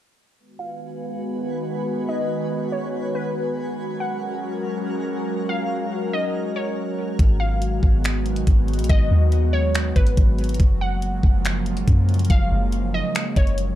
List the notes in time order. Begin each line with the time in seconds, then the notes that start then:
0.38 D#3 G#3 B3 F#4 B4 G#5
0.59 F5
2.09 D#5
2.72 C#5
3.15 B4
3.79 F#3 G#3 C#4 F#4 A#4 F6
4.00 F#5
5.49 F5
6.13 D#5
6.56 C#5
7.19 G#1 D#3 F#3 G#3 B3 F#4, kick, closed hi-hat
7.40 F5
7.62 closed hi-hat
7.83 G#1, kick
8.04 finger snap, closed hi-hat
8.26 closed hi-hat
8.36 closed hi-hat
8.47 G#1, kick, closed hi-hat
8.68 closed hi-hat
8.73 closed hi-hat
8.79 A#1, closed hi-hat
8.84 closed hi-hat
8.89 G#1 D#5, kick, closed hi-hat
9.11 D#2
9.32 closed hi-hat
9.53 C#5
9.75 finger snap, closed hi-hat
9.96 G#1 B4, kick, closed hi-hat
10.07 closed hi-hat
10.17 G#1, kick, closed hi-hat
10.38 closed hi-hat
10.44 closed hi-hat
10.49 closed hi-hat
10.54 closed hi-hat
10.60 F#1 C#3 F3 G#3 A#3, kick, closed hi-hat
10.81 F#5
11.02 closed hi-hat
11.23 F#1, kick
11.45 finger snap, closed hi-hat
11.66 closed hi-hat
11.77 closed hi-hat
11.88 F#2, kick, closed hi-hat
12.09 closed hi-hat
12.14 closed hi-hat
12.19 closed hi-hat
12.25 closed hi-hat
12.30 F#1 F5, kick, closed hi-hat
12.51 F#1
12.72 closed hi-hat
12.94 D#5
13.15 finger snap, closed hi-hat
13.36 F#1 C#5, kick, closed hi-hat
13.47 closed hi-hat
13.58 closed hi-hat